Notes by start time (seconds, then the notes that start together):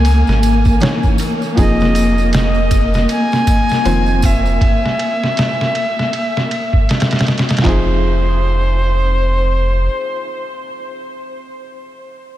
Already playing: C#2 E3 A#3 C#4 D#4 G#4 G#5
0.05 ride, tambourine
0.27 G#1, snare, tambourine
0.43 ride, tambourine
0.65 kick, tambourine
0.80 E3 C#4 D#4 C#5, snare, ride, tambourine
1.03 kick, tambourine
1.18 ride, tambourine
1.42 tambourine
1.55 F1 F3 C4 D#4 G#4, kick, ride, tambourine
1.59 D#5
1.80 snare, tambourine
1.95 ride, tambourine
2.18 tambourine
2.33 D#5, snare, ride, tambourine
2.55 tambourine
2.71 kick, ride, tambourine
2.94 snare, tambourine
3.09 G#5, ride, tambourine
3.32 snare, tambourine
3.47 kick, ride, tambourine
3.69 snare, tambourine
3.84 F1 D#3 F3 C4 C5, ride, tambourine
4.06 tambourine
4.22 E5, kick, ride, tambourine
4.46 tambourine
4.61 kick, ride
4.86 snare
4.99 ride
5.24 snare
5.37 snare, ride
5.61 snare
5.75 ride
5.99 snare
6.13 ride
6.37 snare
6.51 ride
6.73 kick
6.89 snare, ride
7.00 snare, ride
7.11 snare, ride
7.19 snare, ride
7.27 snare, ride
7.38 snare, ride
7.49 snare, ride
7.57 snare, ride
7.62 F1 F3 C4 D#4 C5, kick, clap
7.68 G#4